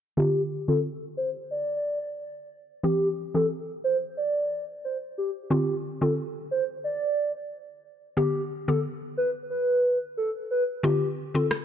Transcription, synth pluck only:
0, 0, Header, 1, 2, 480
1, 0, Start_track
1, 0, Tempo, 666667
1, 125, Time_signature, 4, 2, 24, 8
1, 8387, End_track
2, 0, Start_track
2, 0, Title_t, "Synth pluck"
2, 0, Program_c, 0, 84
2, 123, Note_on_c, 0, 50, 97
2, 125, Note_on_c, 0, 60, 89
2, 127, Note_on_c, 0, 65, 103
2, 460, Note_off_c, 0, 50, 0
2, 461, Note_off_c, 0, 60, 0
2, 463, Note_off_c, 0, 65, 0
2, 489, Note_on_c, 0, 50, 78
2, 491, Note_on_c, 0, 60, 67
2, 493, Note_on_c, 0, 65, 84
2, 629, Note_off_c, 0, 50, 0
2, 630, Note_off_c, 0, 60, 0
2, 631, Note_off_c, 0, 65, 0
2, 2041, Note_on_c, 0, 52, 91
2, 2044, Note_on_c, 0, 60, 88
2, 2046, Note_on_c, 0, 67, 104
2, 2379, Note_off_c, 0, 52, 0
2, 2381, Note_off_c, 0, 60, 0
2, 2382, Note_off_c, 0, 67, 0
2, 2408, Note_on_c, 0, 52, 79
2, 2411, Note_on_c, 0, 60, 69
2, 2412, Note_on_c, 0, 67, 85
2, 2548, Note_off_c, 0, 52, 0
2, 2550, Note_off_c, 0, 60, 0
2, 2550, Note_off_c, 0, 67, 0
2, 3963, Note_on_c, 0, 50, 94
2, 3964, Note_on_c, 0, 60, 91
2, 3967, Note_on_c, 0, 65, 107
2, 4300, Note_off_c, 0, 50, 0
2, 4301, Note_off_c, 0, 60, 0
2, 4302, Note_off_c, 0, 65, 0
2, 4329, Note_on_c, 0, 50, 75
2, 4332, Note_on_c, 0, 60, 70
2, 4334, Note_on_c, 0, 65, 84
2, 4469, Note_off_c, 0, 50, 0
2, 4470, Note_off_c, 0, 60, 0
2, 4471, Note_off_c, 0, 65, 0
2, 5881, Note_on_c, 0, 50, 93
2, 5882, Note_on_c, 0, 59, 87
2, 5885, Note_on_c, 0, 67, 104
2, 6219, Note_off_c, 0, 50, 0
2, 6220, Note_off_c, 0, 59, 0
2, 6221, Note_off_c, 0, 67, 0
2, 6250, Note_on_c, 0, 50, 74
2, 6250, Note_on_c, 0, 59, 68
2, 6253, Note_on_c, 0, 67, 84
2, 6389, Note_off_c, 0, 50, 0
2, 6389, Note_off_c, 0, 59, 0
2, 6391, Note_off_c, 0, 67, 0
2, 7800, Note_on_c, 0, 50, 95
2, 7803, Note_on_c, 0, 60, 85
2, 7805, Note_on_c, 0, 65, 105
2, 8139, Note_off_c, 0, 50, 0
2, 8140, Note_off_c, 0, 60, 0
2, 8141, Note_off_c, 0, 65, 0
2, 8168, Note_on_c, 0, 50, 73
2, 8171, Note_on_c, 0, 60, 67
2, 8172, Note_on_c, 0, 65, 87
2, 8308, Note_off_c, 0, 50, 0
2, 8310, Note_off_c, 0, 60, 0
2, 8310, Note_off_c, 0, 65, 0
2, 8387, End_track
0, 0, End_of_file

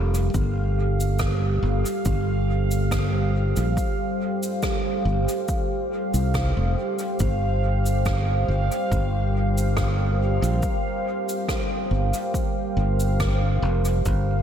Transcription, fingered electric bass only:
0, 0, Header, 1, 2, 480
1, 0, Start_track
1, 0, Key_signature, -2, "minor"
1, 0, Tempo, 857143
1, 192, Time_signature, 4, 2, 24, 8
1, 8077, End_track
2, 0, Start_track
2, 0, Title_t, "Fingered electric bass"
2, 0, Program_c, 0, 33
2, 0, Note_on_c, 0, 29, 96
2, 165, Note_off_c, 0, 29, 0
2, 192, Note_on_c, 0, 31, 91
2, 891, Note_off_c, 0, 31, 0
2, 910, Note_on_c, 0, 31, 78
2, 1024, Note_off_c, 0, 31, 0
2, 1151, Note_on_c, 0, 31, 82
2, 1975, Note_off_c, 0, 31, 0
2, 2000, Note_on_c, 0, 34, 82
2, 2099, Note_off_c, 0, 34, 0
2, 2830, Note_on_c, 0, 31, 73
2, 2943, Note_off_c, 0, 31, 0
2, 3438, Note_on_c, 0, 36, 74
2, 3648, Note_off_c, 0, 36, 0
2, 3679, Note_on_c, 0, 29, 75
2, 3778, Note_off_c, 0, 29, 0
2, 4033, Note_on_c, 0, 31, 89
2, 4731, Note_off_c, 0, 31, 0
2, 4751, Note_on_c, 0, 31, 74
2, 4864, Note_off_c, 0, 31, 0
2, 4992, Note_on_c, 0, 31, 82
2, 5815, Note_off_c, 0, 31, 0
2, 5837, Note_on_c, 0, 34, 87
2, 5937, Note_off_c, 0, 34, 0
2, 6669, Note_on_c, 0, 31, 79
2, 6783, Note_off_c, 0, 31, 0
2, 7150, Note_on_c, 0, 31, 78
2, 7609, Note_off_c, 0, 31, 0
2, 7630, Note_on_c, 0, 29, 97
2, 7844, Note_off_c, 0, 29, 0
2, 7871, Note_on_c, 0, 31, 94
2, 8077, Note_off_c, 0, 31, 0
2, 8077, End_track
0, 0, End_of_file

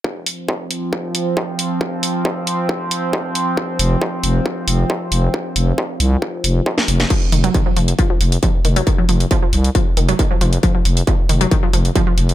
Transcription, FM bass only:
0, 0, Header, 1, 2, 480
1, 0, Start_track
1, 0, Tempo, 441176
1, 48, Time_signature, 4, 2, 24, 8
1, 13427, End_track
2, 0, Start_track
2, 0, Title_t, "FM bass"
2, 0, Program_c, 0, 39
2, 4128, Note_on_c, 0, 29, 96
2, 4310, Note_off_c, 0, 29, 0
2, 4609, Note_on_c, 0, 29, 79
2, 4790, Note_off_c, 0, 29, 0
2, 5089, Note_on_c, 0, 29, 89
2, 5270, Note_off_c, 0, 29, 0
2, 5568, Note_on_c, 0, 29, 100
2, 5750, Note_off_c, 0, 29, 0
2, 6048, Note_on_c, 0, 29, 99
2, 6229, Note_off_c, 0, 29, 0
2, 6528, Note_on_c, 0, 36, 96
2, 6709, Note_off_c, 0, 36, 0
2, 7008, Note_on_c, 0, 29, 87
2, 7190, Note_off_c, 0, 29, 0
2, 7489, Note_on_c, 0, 29, 103
2, 7670, Note_off_c, 0, 29, 0
2, 7969, Note_on_c, 0, 29, 97
2, 8150, Note_off_c, 0, 29, 0
2, 8448, Note_on_c, 0, 29, 76
2, 8630, Note_off_c, 0, 29, 0
2, 8929, Note_on_c, 0, 29, 89
2, 9110, Note_off_c, 0, 29, 0
2, 9409, Note_on_c, 0, 29, 98
2, 9590, Note_off_c, 0, 29, 0
2, 9889, Note_on_c, 0, 29, 95
2, 10070, Note_off_c, 0, 29, 0
2, 10368, Note_on_c, 0, 36, 95
2, 10550, Note_off_c, 0, 36, 0
2, 10848, Note_on_c, 0, 29, 86
2, 11030, Note_off_c, 0, 29, 0
2, 11327, Note_on_c, 0, 29, 102
2, 11509, Note_off_c, 0, 29, 0
2, 11808, Note_on_c, 0, 29, 101
2, 11990, Note_off_c, 0, 29, 0
2, 12289, Note_on_c, 0, 29, 82
2, 12470, Note_off_c, 0, 29, 0
2, 12768, Note_on_c, 0, 29, 86
2, 12950, Note_off_c, 0, 29, 0
2, 13248, Note_on_c, 0, 29, 102
2, 13427, Note_off_c, 0, 29, 0
2, 13427, End_track
0, 0, End_of_file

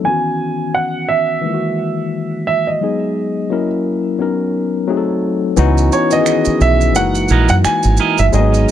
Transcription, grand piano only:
0, 0, Header, 1, 2, 480
1, 0, Start_track
1, 0, Tempo, 689655
1, 35, Time_signature, 4, 2, 24, 8
1, 6064, End_track
2, 0, Start_track
2, 0, Title_t, "Grand piano"
2, 0, Program_c, 0, 0
2, 34, Note_on_c, 0, 80, 80
2, 518, Note_on_c, 0, 78, 78
2, 529, Note_off_c, 0, 80, 0
2, 740, Note_off_c, 0, 78, 0
2, 755, Note_on_c, 0, 76, 79
2, 1710, Note_off_c, 0, 76, 0
2, 1720, Note_on_c, 0, 76, 72
2, 1860, Note_on_c, 0, 75, 54
2, 1861, Note_off_c, 0, 76, 0
2, 2549, Note_off_c, 0, 75, 0
2, 4127, Note_on_c, 0, 73, 74
2, 4264, Note_off_c, 0, 73, 0
2, 4264, Note_on_c, 0, 75, 90
2, 4577, Note_off_c, 0, 75, 0
2, 4605, Note_on_c, 0, 76, 85
2, 4824, Note_off_c, 0, 76, 0
2, 4844, Note_on_c, 0, 78, 84
2, 5208, Note_off_c, 0, 78, 0
2, 5219, Note_on_c, 0, 78, 87
2, 5253, Note_off_c, 0, 78, 0
2, 5323, Note_on_c, 0, 80, 94
2, 5672, Note_off_c, 0, 80, 0
2, 5703, Note_on_c, 0, 76, 83
2, 5738, Note_off_c, 0, 76, 0
2, 5807, Note_on_c, 0, 75, 73
2, 6064, Note_off_c, 0, 75, 0
2, 6064, End_track
0, 0, End_of_file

